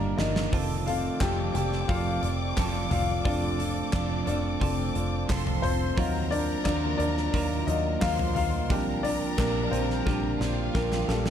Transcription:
Already playing: G1 A#2 D#3 G3 A#3 D4 F4 G4 A#4 D5 D#5 F5 A#5
0.17 G1 D#3 G3 A#3 D4 A#4 D#5, snare
0.36 snare
0.52 F1 C3 F3 A3 C4 F4 A4 D5 D6, kick, hi-hat pedal, open hi-hat
0.86 A3 C4 F4 A4 F5, hi-hat pedal, open hi-hat
1.20 F1 F3 C4 F4 G4 A4 G5, kick, snare, clap, hi-hat pedal, open hi-hat
1.54 F1 C4 F4 G4 A4 G5, hi-hat pedal, open hi-hat
1.72 snare
1.81 G5
1.88 F1 F3 C4 F4 A4 F5, kick, hi-hat pedal, open hi-hat
2.22 F1 C4 F4 A4, hi-hat pedal, open hi-hat
2.56 F1 F3 C4 F4 A4, kick, snare, clap, hi-hat pedal, open hi-hat
2.91 F1 C4 F4 A4 F5, floor tom, hi-hat pedal, open hi-hat
3.25 F1 F3 A3 C4 D4 F4 A4 D5, kick, hi-hat pedal, open hi-hat
3.59 C4 F4 A4, hi-hat pedal, open hi-hat
3.92 F1 F3 C4 F4 A4, kick, snare, clap, hi-hat pedal, open hi-hat
4.26 F1 C4 D4 F4 A4 D5, hi-hat pedal, open hi-hat
4.60 F1 F3 A3 C4 F4 A4, kick, hi-hat pedal, open hi-hat
4.94 F1 C4 F4 A4, hi-hat pedal, open hi-hat
5.28 F1 F3 C4 F4 A4 C5 C6, kick, snare, clap, hi-hat pedal, open hi-hat
5.47 floor tom
5.62 F1 C4 F4 A4 C5, floor tom, hi-hat pedal, open hi-hat
5.97 D#2 D#3 F#3 A#3 D#4 F4 A#4 A#5, kick, hi-hat pedal, open hi-hat
6.30 A#3 D4 F4 A#4 D5, hi-hat pedal, open hi-hat
6.64 D#2 F#3 A#3 D4 F4 A#4 D5, kick, snare, clap, hi-hat pedal, open hi-hat
6.98 D#2 D4 F4 A#4 D5, hi-hat pedal, open hi-hat
7.02 A#3
7.17 snare
7.33 D#2 D#3 F#3 A#3 F4 A#4, kick, hi-hat pedal, open hi-hat
7.67 D#2 F#3 A#3 D#4 F4 A#4 D#5, hi-hat pedal, open hi-hat
8.01 D#2 F#3 A#3 F4 A#4 C5 F5 C6, kick, snare, clap, hi-hat pedal, open hi-hat
8.19 floor tom
8.35 D#2 A#3 F4 A#4 F5, floor tom, hi-hat pedal, open hi-hat
8.69 A#1 A#2 D3 F3 G3 A#3 C4 D4 G4 A#4 A#5, kick, hi-hat pedal, open hi-hat
9.03 F3 A#3 D4 G4 D5, hi-hat pedal, open hi-hat
9.37 A#1 F3 A#3 D4 G4 A#4, kick, snare, clap, hi-hat pedal, open hi-hat
9.64 D5
9.71 A#1 F3 A#3 C4 D4 G4 C5, hi-hat pedal, open hi-hat
9.90 snare
10.05 A#1 A#2 D3 F3 G3 A#3 C4 D4 G4 A#4, kick, snare
10.39 A#1 F3 A#3 D4 F4 G4 F5, snare
10.73 A#1 F3 A#3 D4 G4 A#4, kick, snare
10.92 snare
11.07 A#1 F3 G3 A#3 D4 G4 A4, snare
11.26 snare

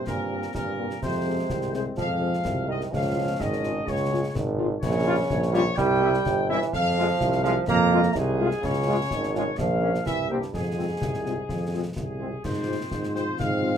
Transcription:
Already playing: A#3 C4
0.07 G2 A#2 A#4, concert bass drum, snare
0.31 A#3 C4 G4
0.43 snare
0.54 G2 A#2 A#4, concert bass drum, snare
0.79 A#3 C4 G4
0.90 snare
1.01 F2 C3 G#3 C4 C5, concert bass drum, snare, crash
1.26 G#3 C4 G#4
1.50 C2, concert bass drum, snare
1.62 snare
1.73 C3 G#3 C4 G#4 C5, snare
1.97 F2 F3 F5, concert bass drum, snare
2.21 G#3 C4 G#4
2.33 snare
2.45 C2, concert bass drum, snare
2.67 D#3 G#3 C4 G#4 D#5
2.81 snare
2.91 C#2 F3 G#3 C#4 F5, concert bass drum, snare
3.16 G#3 C#4 F4
3.40 G#1 D#3 D#5, concert bass drum, snare
3.53 snare
3.63 G#3 C#4 F4, snare
3.86 C#2 C#3 C#5, concert bass drum, snare
4.11 G#3 C#4 F4
4.35 G#1, concert bass drum, snare
4.58 G#3 C#4 F4
4.81 A#1 C#3 C#5, concert bass drum, snare, crash
5.06 G3 C#4 F4
5.30 A#1, concert bass drum, snare
5.42 snare
5.51 C#3 G3 C#4 F4 C#5, snare
5.76 C2 G3 G5, concert bass drum, snare
6.01 G3 C4 E4
6.14 snare
6.25 G1, concert bass drum, snare
6.49 E3 G3 C4 E4 E5
6.62 snare
6.73 F2 F3 F5, concert bass drum, snare
6.97 G#3 C4 F4
7.20 C2, concert bass drum, snare
7.32 snare
7.43 F3 G#3 C4 F4 F5, snare
7.67 F2 A#3 A#5, concert bass drum, snare
7.92 G#3 C4 F4
8.03 snare
8.15 C2 G#2 G#4, concert bass drum, snare
8.39 G#3 C4 F4
8.51 snare
8.61 C#2 C#3 C#5, concert bass drum, snare, crash
8.87 G#3 C#4 F4
9.11 G#1, concert bass drum, snare
9.23 snare
9.34 C#3 G#3 C#4 F4 C#5, snare
9.57 A#1 F3 F5, concert bass drum, snare
9.81 A#3 C#4 A#4
9.95 snare
10.05 C2 E3 E5, concert bass drum, snare
10.29 G2 A#3 C4 G4
10.42 snare
10.53 F2 G#2 G#4, concert bass drum, snare
10.76 G#3 C4 F4
11.01 C2, concert bass drum, snare
11.14 snare
11.25 G#3 C4 F4, snare
11.49 F2, concert bass drum, snare
11.73 G#3 C4 F4
11.96 C2 G#4, concert bass drum, snare
12.20 G#3 C4 F4
12.42 G#2 F3 C4 C5, concert bass drum, snare, crash
12.68 G#3 C4 F4
12.91 G#2 C4, concert bass drum, snare
13.03 snare
13.14 G#3 C4 F4 C5, snare
13.39 G#2 F5, concert bass drum, snare
13.63 G#3 C4 F4

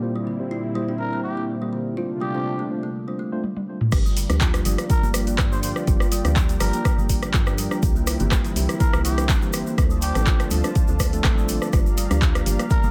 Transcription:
Already playing: A#2 G3
0.02 A#3 C4 E4 G4 C5
0.16 G3
0.27 D3
0.40 A#3 C4 E4 G4 C5
0.51 E4
0.75 G3 A#3 C4 E4 G4 C5
0.88 D4
1.00 A#4
1.13 A#3 C4 E4 G4 C5
1.24 G4
1.37 A#3
1.62 G3 A#3 C4 E4 G4 C5
1.73 D3
1.97 C3 A3 C4 D4 F4 C5
2.21 G3 G4
2.35 A3 C4 D4 F4 C5
2.59 A3
2.71 A3 C4 D4 F4 C5
2.83 A3
3.08 G3 A3 C4 D4 F4 C5
3.19 A3
3.32 A3 C4 D4 F4 C5
3.44 high tom
3.57 high tom
3.81 mid tom
3.92 G1 F3 G3 A#3 D4 F4 G4 A#4 D5 G5, kick, cross-stick, closed hi-hat, crash, shaker
4.06 G3, shaker
4.17 D3, open hi-hat, shaker
4.29 D2 F3 G3 A#3 D4 G4, cross-stick, closed hi-hat, shaker
4.41 F4, kick, clap, closed hi-hat, shaker
4.54 cross-stick, closed hi-hat, shaker
4.65 G1 F3 G3 A#3 D4 G4, open hi-hat, shaker
4.78 D4, cross-stick, closed hi-hat, shaker
4.90 A#4, kick, closed hi-hat, shaker
5.03 G1 F3 G3 A#3 D4 G4, shaker
5.14 cross-stick, open hi-hat, shaker
5.27 A#3, closed hi-hat, shaker
5.38 G2, kick, cross-stick, clap, closed hi-hat, shaker
5.52 F3 G3 A#3 D4 G4 C5, shaker
5.63 D3 C5, open hi-hat, shaker
5.76 cross-stick, shaker
5.87 G1 F3 G3 A#3 D4 F4 G4, kick, closed hi-hat, shaker
6.00 cross-stick, shaker
6.12 G3, open hi-hat, shaker
6.25 D2 F3 G3 A#3 D4 G4, cross-stick, closed hi-hat, shaker
6.36 kick, clap, closed hi-hat, shaker
6.49 A#3, closed hi-hat, shaker
6.60 G1 F3 G3 A#3 D4 G4 A#4, cross-stick, open hi-hat, shaker
6.73 A#3, closed hi-hat, shaker
6.85 kick, cross-stick, closed hi-hat, shaker
6.98 G1 F3 G3 A#3 D4 G4, shaker
7.09 D3, kick, open hi-hat, shaker
7.23 cross-stick, closed hi-hat, shaker
7.34 G2 F4, kick, clap, closed hi-hat, shaker
7.47 F3 G3 A#3 D4 G4, cross-stick, shaker
7.58 G3, open hi-hat, shaker
7.71 D4, cross-stick, shaker
7.83 C2 E3 G3 A#3 C4 E4 G4 C5, kick, closed hi-hat, shaker
7.96 A#3, shaker
8.07 cross-stick, open hi-hat, shaker
8.19 G1 E3 G3 A#3 C4 G4, closed hi-hat, shaker
8.32 kick, cross-stick, clap, closed hi-hat, shaker
8.44 G3, closed hi-hat, shaker
8.56 C2 D3 E3 G3 A#3 C4 G4, open hi-hat, shaker
8.69 cross-stick, closed hi-hat, shaker
8.80 E4 A#4, kick, closed hi-hat, shaker
8.93 C2 E3 G3 A#3 C4 G4, cross-stick, shaker
9.05 G3 G4, open hi-hat, shaker
9.18 D4, cross-stick, closed hi-hat, shaker
9.29 G1, kick, clap, closed hi-hat, shaker
9.42 E3 G3 A#3 C4 G4, shaker
9.53 cross-stick, open hi-hat, shaker
9.67 A#3, shaker
9.78 D2 F3 A3 C4 D4 F4 A4 D5 A5, kick, cross-stick, closed hi-hat, shaker
9.90 G3, shaker
10.02 D3 G4, open hi-hat, shaker
10.15 A1 F3 A3 C4 D4 A4, cross-stick, closed hi-hat, shaker
10.27 F4, kick, clap, closed hi-hat, shaker
10.40 cross-stick, closed hi-hat, shaker
10.51 D2 F3 G3 A3 C4 D4 A4, open hi-hat, shaker
10.64 D4, cross-stick, closed hi-hat, shaker
10.75 kick, closed hi-hat, shaker
10.88 D2 F3 A3 C4 D4 A4, shaker
11.00 kick, cross-stick, open hi-hat, shaker
11.13 F3 A3 C4 D4 A4, closed hi-hat, shaker
11.24 A1, kick, cross-stick, clap, closed hi-hat, shaker
11.38 G3, shaker
11.49 D3, open hi-hat, shaker
11.62 cross-stick, shaker
11.73 G1 F3 G3 A#3 D4 F4 G4 F5 A#5, kick, cross-stick, closed hi-hat, shaker
11.86 shaker
11.97 G3, open hi-hat, shaker
12.10 D2 F3 G3 A#3 D4 G4, cross-stick, closed hi-hat, shaker
12.22 kick, clap, closed hi-hat, shaker
12.35 A#3, cross-stick, closed hi-hat, shaker
12.46 G1 F3 G3 A#3 D4 G4, open hi-hat, shaker
12.59 A#3, cross-stick, closed hi-hat, shaker
12.70 A#4, kick, closed hi-hat, shaker
12.83 G1 F3 G3 A#3 D4 G4, shaker

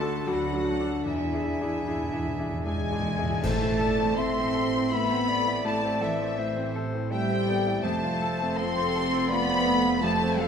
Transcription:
Already playing: D2 A3 D4 F#4 A4 A5 C6
0.00 D4 F#4 A4
0.08 A3
0.27 D2 F#3 D4 F#4 A4 F#5 B5
0.47 A3
0.53 D4 F#4 A4
0.66 D4 A5
0.79 D4 F#4 A4
0.86 A3
1.06 E2 E3 G#3 E4 G#4 E5 G#5
1.16 E2
1.24 E2 G#3
1.32 E2 D4 E4 G#4
1.40 E2
1.47 E2 G#3
1.56 E2
1.61 E2 D4 E4 G#4
1.66 G#3
1.72 E2
1.80 E2
1.86 E2 G#3 D4 E4 G#4
1.96 E2
2.03 E2 G#3
2.11 E2 D4 E4 G#4
2.19 E2
2.26 E2 G#3
2.35 E2 D4 E4
2.40 E2 G#4
2.46 G#3
2.51 E2
2.60 E2
2.64 E2 G#3 D4 E4 G#4 G#5
2.75 E2
2.83 E2 G#3
2.91 E2 D4 E4 G#4
3.00 E2
3.05 E2 G#3
3.15 E2 D4 E4 G#4
3.23 E2 G#3
3.31 E2
3.42 A1 A2 C3 A3 A4 C5 A5, concert bass drum, crash
3.62 E3 E4
3.80 A3 A4 D5
3.99 C4
4.16 A3 C4 E4 E5 C6
4.37 E3 C4
4.54 C3 A4
4.74 E3 C4
4.91 A3 B3 E4 E5 B5
5.09 C4
5.28 A3 B3 D5
5.46 E3 E4
5.64 A2 C3 A3 A5
5.83 E3 C4
6.01 E3 A3 A4 E5
6.19 C4
6.37 A3 E4 C5
6.56 E3 C4
6.75 C3 A4
6.93 E3 C4
7.11 G3 A3 E4 E5 G5
7.30 C4
7.48 A3 B3 D5
7.66 E3 E4
7.83 F1 F2 C3 A3 A4 C5 A5
8.03 F3 F4
8.22 A3 A4
8.40 C4
8.57 A3 C4 F4 A4 C6
8.74 F3 C4
8.93 C3 A4
9.11 F3 C4
9.29 A3 B3 F4 D5 B5
9.48 C4
9.67 A3 B3
9.85 F3 F4
10.02 F2 C3 A3 C5 A5
10.21 F3 C4
10.39 F3 A3 A4 F5

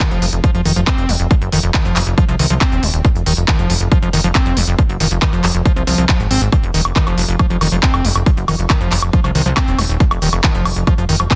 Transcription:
0.00 D#3, kick, clap, closed hi-hat
0.11 F1 F3, closed hi-hat
0.22 F1 F3, open hi-hat
0.33 F1, closed hi-hat
0.44 F3, kick, closed hi-hat
0.55 F1 F3, closed hi-hat
0.65 F1 D#3, open hi-hat
0.76 F1 F3, closed hi-hat
0.87 C4, kick, clap, closed hi-hat
0.98 F1, closed hi-hat
1.09 F1 F3, open hi-hat
1.20 F1, closed hi-hat
1.31 F3, kick, closed hi-hat
1.42 F#1, closed hi-hat
1.52 F1 D#3, open hi-hat
1.63 F1, closed hi-hat
1.74 D#3, kick, clap, closed hi-hat
1.85 F1 F3, closed hi-hat
1.96 F1 F3, clap, open hi-hat
2.07 F1, closed hi-hat
2.18 F3, kick, closed hi-hat
2.29 C2 F3, closed hi-hat
2.39 C2 D#3, open hi-hat
2.50 C2 F3, closed hi-hat
2.61 C4, kick, clap, closed hi-hat
2.72 D#1, closed hi-hat
2.83 D#1 F3, open hi-hat
2.94 D#1, closed hi-hat
3.05 F3, kick, closed hi-hat
3.15 F1, closed hi-hat
3.26 D#1 D#3, open hi-hat
3.37 F1, closed hi-hat
3.48 D#3, kick, clap, closed hi-hat
3.59 F1 F3, closed hi-hat
3.70 F1 F3, open hi-hat
3.81 F1, closed hi-hat
3.92 F3, kick, closed hi-hat
4.02 F1 F3, closed hi-hat
4.13 F1 D#3, open hi-hat
4.24 F1 F3, closed hi-hat
4.35 C4, kick, clap, closed hi-hat
4.46 F1, closed hi-hat
4.57 F1 F3, open hi-hat
4.68 F1, closed hi-hat
4.79 F3, kick, closed hi-hat
4.89 F#1, closed hi-hat
5.00 F1 D#3, open hi-hat
5.11 F1, closed hi-hat
5.22 D#3, kick, clap, closed hi-hat
5.33 F1 F3, closed hi-hat
5.44 F1 F3, clap, open hi-hat
5.55 F1, closed hi-hat
5.65 F3, kick, closed hi-hat
5.76 C2 F3, closed hi-hat
5.87 C2 F3, open hi-hat
5.98 C2 F3, closed hi-hat
6.09 F3, kick, clap, closed hi-hat
6.20 G#1, closed hi-hat
6.31 G#1 C4, open hi-hat
6.42 G#1, closed hi-hat
6.52 F3, kick, closed hi-hat, high woodblock
6.63 F1, closed hi-hat
6.74 D#1 D#3, open hi-hat
6.85 high woodblock
6.96 D#3, kick, clap, closed hi-hat
7.07 F1 F3, closed hi-hat, high woodblock
7.18 F1 F3, open hi-hat
7.29 F1, closed hi-hat
7.39 F3, kick, closed hi-hat, high woodblock
7.50 F1 F3, closed hi-hat
7.61 F1 D#3, open hi-hat, high woodblock
7.72 F1 F3, closed hi-hat
7.83 C4, kick, clap, closed hi-hat
7.94 F1, closed hi-hat, high woodblock
8.05 F1 F3, open hi-hat
8.15 F1, closed hi-hat, high woodblock
8.26 F3, kick, closed hi-hat
8.37 F#1, closed hi-hat
8.48 F1 D#3, open hi-hat, high woodblock
8.59 F1, closed hi-hat
8.70 D#3, kick, clap, closed hi-hat, high woodblock
8.81 F1 F3, closed hi-hat
8.92 F1 F3, clap, open hi-hat
9.02 F1, closed hi-hat, high woodblock
9.13 F3, kick, closed hi-hat
9.24 C2 F3, closed hi-hat, high woodblock
9.35 C2 D#3, open hi-hat
9.46 C2 F3, closed hi-hat
9.57 C4, kick, clap, closed hi-hat, high woodblock
9.68 D#1, closed hi-hat
9.79 D#1 F3, open hi-hat, high woodblock
9.89 D#1, closed hi-hat
10.00 F3, kick, closed hi-hat
10.11 F1, closed hi-hat, high woodblock
10.22 D#1 D#3, open hi-hat
10.33 F1, closed hi-hat, high woodblock
10.44 D#3, kick, clap, closed hi-hat
10.55 F1 F3, closed hi-hat
10.65 F1 F3, open hi-hat, high woodblock
10.76 F1, closed hi-hat
10.87 F3, kick, closed hi-hat, high woodblock
10.98 F1 F3, closed hi-hat
11.09 F1 D#3, open hi-hat
11.20 F1 F3, closed hi-hat, high woodblock
11.31 C4, kick, clap, closed hi-hat

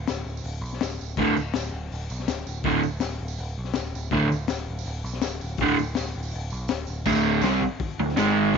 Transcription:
0.07 D1, snare, open hi-hat, tambourine
0.17 tambourine
0.24 D1, tambourine
0.37 tambourine
0.44 D1, open hi-hat, tambourine
0.61 B1
0.66 tambourine
0.73 snare
0.80 D1, snare, open hi-hat, tambourine
1.00 D1, tambourine
1.11 tambourine
1.17 D1 D2 A2 D3, kick, crash
1.36 D1, tambourine
1.48 tambourine
1.53 D1, snare, open hi-hat, tambourine
1.72 D1
1.92 D1, open hi-hat, tambourine
2.01 tambourine
2.10 B1, tambourine
2.19 snare
2.27 D1, snare, open hi-hat, tambourine
2.37 tambourine
2.47 D1, tambourine
2.57 tambourine
2.63 D1 D2 A2, kick, open hi-hat
2.68 D3
2.83 D1, tambourine
2.93 tambourine
3.00 D1, snare, open hi-hat, tambourine
3.21 D1
3.28 tambourine
3.37 D1, open hi-hat, tambourine
3.49 tambourine
3.58 B1
3.64 snare
3.73 D1, snare, open hi-hat, tambourine
3.86 tambourine
3.94 D1, tambourine
4.06 tambourine
4.10 D1 D2 A2 D3, kick, open hi-hat
4.32 D1, tambourine
4.41 tambourine
4.48 D1, snare, open hi-hat, tambourine
4.68 D1
4.79 tambourine
4.85 D1, open hi-hat, tambourine
4.97 tambourine
5.04 B1, tambourine
5.13 snare
5.21 D1, snare, open hi-hat, tambourine
5.31 tambourine
5.41 D1, tambourine
5.49 tambourine
5.57 D1, kick, open hi-hat, tambourine
5.61 D2 A2 D3
5.78 D1, tambourine
5.87 tambourine
5.95 D1, snare, open hi-hat, tambourine
6.14 D1, tambourine
6.23 tambourine
6.31 D1, open hi-hat
6.50 B1, tambourine
6.61 tambourine
6.68 D1, snare, open hi-hat, tambourine
6.87 D1, tambourine
6.96 tambourine
7.05 D1 D2 A2 D3, kick, crash
7.41 C2 C3 G3 C4, snare, open hi-hat, tambourine
7.61 kick
7.80 kick, open hi-hat
7.98 D1 D2 A2
8.09 snare
8.16 G#1 G#2 D#3 G#3, snare, open hi-hat, tambourine
8.54 D1 D2, kick, open hi-hat

